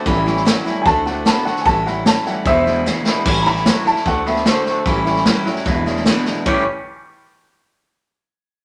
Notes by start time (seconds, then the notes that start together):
0.06 A1 A2 E3 G3 C#4 E4, kick, snare
0.26 A2 E3 G3 C#4 E4, snare
0.36 snare
0.45 A2 E3 F#3 G3 C#4 E4, snare, hi-hat pedal
0.66 A2 E3 G3 C#4 E4, muted upright bass stroke, snare
0.82 D2 G#5, kick, snare
0.86 D3 A3 C4 F#4 A5
1.06 D3 A3 C4 F#4 F#5, snare
1.25 D3 A3 B3 C4 F#4 A5, snare, hi-hat pedal
1.45 D3 A3 C4 F#4 F#5, muted upright bass stroke, snare
1.56 snare
1.61 G#5
1.66 A1 A2 E3 G3 C#4 E4 A5, kick, snare
1.86 A2 E3 G3 C#4 E4 F#5, snare
2.06 A2 E3 F#3 G3 C#4 E4 A5, snare, hi-hat pedal
2.26 A2 E3 G3 C#4 E4 F#5, muted upright bass stroke, snare
2.45 E1 E2 B2 E3 G#3 D4 E4 C5 E5, kick, snare
2.66 E2 B2 E3 G#3 D4 E4, snare
2.86 E2 C#3 E3 G#3 D4 E4, snare, hi-hat pedal
3.06 E2 B2 E3 G#3 D4 E4, muted upright bass stroke, snare
3.25 A1 A2 E3 G3 C#4 E4, kick, snare, crash
3.43 E4 A#5, snare
3.47 A2 E3 G3 C#4 B5
3.56 snare
3.66 A2 E3 F#3 G3 C#4 E4, snare, hi-hat pedal
3.85 A2 F#3 G3 C#4 E4 A5, muted upright bass stroke, snare
3.96 snare
4.06 D2 D3 A3 C4 F#4 F#5, kick, snare
4.26 D3 A3 B3 C4 F#4 E5, snare
4.36 snare
4.46 D3 A3 C4 F#4 C5, snare, hi-hat pedal
4.66 D3 A3 C4 F#4, muted upright bass stroke, snare
4.86 A1 A2 E3 G3 C#4 E4, kick, snare
5.05 A2 E3 G3 C#4 E4, snare
5.16 snare
5.25 A2 E3 F#3 G3 C#4 E4, snare, hi-hat pedal
5.46 A2 F#3 G3 C#4 E4, muted upright bass stroke, snare
5.56 snare
5.65 E1 E2 B2 E3 G#3 D4 E4, kick, snare
5.86 E2 C#3 E3 G#3 D4 E4, snare
5.96 snare
6.06 E2 B2 E3 G#3 D4 E4, snare, hi-hat pedal
6.25 E2 B2 E3 G#3 D4 E4, muted upright bass stroke, snare
6.46 A1 A2 E3 G3 C#4 E4 G4 C#5, kick, ride bell